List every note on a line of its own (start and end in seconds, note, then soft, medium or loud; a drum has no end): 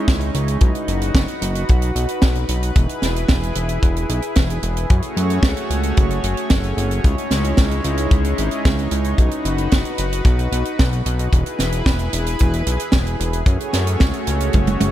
0.00 0.59 G#3 medium
0.00 0.59 C#4 medium
0.00 2.71 D#4 medium
0.00 0.59 E4 medium
0.00 0.59 C#5 medium
0.08 0.31 C#2 medium
0.08 kick loud
0.08 snare loud
0.08 closed hi-hat medium
0.20 closed hi-hat medium
0.34 0.57 C#2 medium
0.34 closed hi-hat medium
0.48 closed hi-hat medium
0.61 0.73 B1 medium
0.61 2.74 F#4 medium
0.61 4.86 B4 medium
0.61 kick loud
0.61 closed hi-hat medium
0.75 closed hi-hat medium
0.88 1.11 F#1 medium
0.88 closed hi-hat medium
1.02 closed hi-hat medium
1.15 1.26 F#1 medium
1.15 kick loud
1.15 snare loud
1.15 closed hi-hat medium
1.28 closed hi-hat soft
1.42 1.64 F#1 medium
1.42 closed hi-hat loud
1.55 closed hi-hat medium
1.69 1.92 B1 loud
1.69 kick loud
1.69 closed hi-hat medium
1.82 closed hi-hat medium
1.95 2.07 B1 medium
1.95 closed hi-hat loud
2.09 closed hi-hat medium
2.22 2.45 B1 medium
2.22 kick loud
2.22 snare loud
2.22 closed hi-hat medium
2.35 closed hi-hat medium
2.49 2.72 B1 loud
2.49 closed hi-hat loud
2.63 closed hi-hat medium
2.75 2.87 E1 loud
2.75 4.88 E4 medium
2.75 7.00 G#4 medium
2.75 kick loud
2.75 closed hi-hat medium
2.89 closed hi-hat medium
3.02 3.25 E1 medium
3.02 snare medium
3.02 closed hi-hat medium
3.16 closed hi-hat soft
3.28 3.52 E1 medium
3.28 kick loud
3.28 snare loud
3.28 closed hi-hat medium
3.43 closed hi-hat medium
3.55 3.79 E1 medium
3.55 closed hi-hat loud
3.69 closed hi-hat medium
3.83 4.06 E1 medium
3.83 kick loud
3.83 closed hi-hat medium
3.96 closed hi-hat medium
4.09 4.21 B1 medium
4.09 closed hi-hat medium
4.22 closed hi-hat soft
4.35 4.59 E1 medium
4.35 kick loud
4.35 snare loud
4.35 closed hi-hat medium
4.50 closed hi-hat medium
4.63 4.86 E1 medium
4.63 closed hi-hat medium
4.77 closed hi-hat medium
4.90 5.01 F#2 medium
4.90 7.02 A3 medium
4.90 9.14 C#4 medium
4.90 7.02 F#4 medium
4.90 9.14 C#5 medium
4.90 kick loud
4.90 closed hi-hat medium
5.02 closed hi-hat medium
5.17 5.39 F#2 loud
5.17 closed hi-hat medium
5.30 closed hi-hat soft
5.43 5.55 C#2 medium
5.43 kick loud
5.43 snare loud
5.43 closed hi-hat medium
5.57 closed hi-hat medium
5.70 5.93 C#2 medium
5.70 closed hi-hat loud
5.83 closed hi-hat medium
5.97 6.20 F#1 loud
5.97 kick loud
5.97 closed hi-hat medium
6.10 closed hi-hat medium
6.24 6.35 F#1 medium
6.24 closed hi-hat medium
6.37 closed hi-hat medium
6.50 6.74 F#1 medium
6.50 kick loud
6.50 snare loud
6.50 closed hi-hat medium
6.64 closed hi-hat soft
6.77 7.00 F#1 loud
6.77 closed hi-hat medium
6.91 closed hi-hat medium
7.04 7.16 C#2 loud
7.04 9.16 G#3 medium
7.04 11.29 D#4 medium
7.04 9.16 E4 medium
7.04 kick loud
7.04 closed hi-hat medium
7.18 closed hi-hat soft
7.31 7.54 C#2 medium
7.31 snare medium
7.31 closed hi-hat medium
7.44 closed hi-hat medium
7.57 7.81 C#2 medium
7.57 kick loud
7.57 snare loud
7.57 closed hi-hat medium
7.71 closed hi-hat soft
7.84 8.07 C#2 medium
7.84 closed hi-hat medium
7.98 closed hi-hat medium
8.11 8.34 C#2 medium
8.11 kick loud
8.11 closed hi-hat medium
8.25 closed hi-hat medium
8.38 8.50 G#1 medium
8.38 closed hi-hat loud
8.51 closed hi-hat soft
8.65 8.88 C#2 medium
8.65 kick loud
8.65 snare loud
8.65 closed hi-hat medium
8.79 closed hi-hat soft
8.91 9.14 C#2 medium
8.91 closed hi-hat medium
9.04 closed hi-hat soft
9.18 9.30 B1 medium
9.18 11.31 F#4 medium
9.18 11.31 B4 medium
9.18 kick loud
9.18 closed hi-hat medium
9.31 closed hi-hat medium
9.45 9.68 F#1 medium
9.45 closed hi-hat medium
9.58 closed hi-hat medium
9.71 9.84 F#1 medium
9.71 kick loud
9.71 snare loud
9.71 closed hi-hat medium
9.85 closed hi-hat medium
9.98 10.22 F#1 medium
9.98 closed hi-hat loud
10.13 closed hi-hat medium
10.25 10.48 B1 loud
10.25 kick loud
10.25 closed hi-hat medium
10.39 closed hi-hat medium
10.52 10.64 B1 medium
10.52 closed hi-hat loud
10.65 closed hi-hat medium
10.79 11.02 B1 medium
10.79 kick loud
10.79 snare loud
10.79 closed hi-hat medium
10.93 closed hi-hat medium
11.06 11.29 B1 loud
11.06 closed hi-hat loud
11.19 closed hi-hat medium
11.33 11.44 E1 loud
11.33 13.45 E4 medium
11.33 14.91 G#4 medium
11.33 13.45 B4 medium
11.33 kick loud
11.33 closed hi-hat medium
11.46 closed hi-hat medium
11.59 11.82 E1 medium
11.59 snare medium
11.59 closed hi-hat loud
11.72 closed hi-hat medium
11.86 12.09 E1 medium
11.86 kick loud
11.86 snare loud
11.86 closed hi-hat medium
11.99 closed hi-hat soft
12.13 12.36 E1 medium
12.13 closed hi-hat loud
12.26 closed hi-hat medium
12.39 12.63 E1 medium
12.39 kick loud
12.39 closed hi-hat medium
12.53 closed hi-hat medium
12.66 12.78 B1 medium
12.66 closed hi-hat loud
12.80 closed hi-hat medium
12.92 13.16 E1 medium
12.92 kick loud
12.92 snare loud
12.92 closed hi-hat medium
13.07 closed hi-hat soft
13.20 13.43 E1 medium
13.20 closed hi-hat loud
13.33 closed hi-hat medium
13.46 13.58 F#2 medium
13.46 14.91 A3 medium
13.46 14.91 C#4 medium
13.46 14.91 F#4 medium
13.46 14.91 C#5 medium
13.46 kick loud
13.46 closed hi-hat medium
13.60 closed hi-hat medium
13.73 13.97 F#2 loud
13.73 snare medium
13.73 closed hi-hat loud
13.87 closed hi-hat medium
14.00 14.12 C#2 medium
14.00 kick loud
14.00 snare loud
14.00 closed hi-hat medium
14.14 closed hi-hat medium
14.27 14.50 C#2 medium
14.27 closed hi-hat loud
14.40 closed hi-hat medium
14.53 14.77 F#1 medium
14.53 kick loud
14.53 closed hi-hat medium
14.53 high tom medium
14.67 closed hi-hat medium
14.67 high tom medium
14.81 14.91 F#1 loud
14.81 closed hi-hat loud
14.81 high tom medium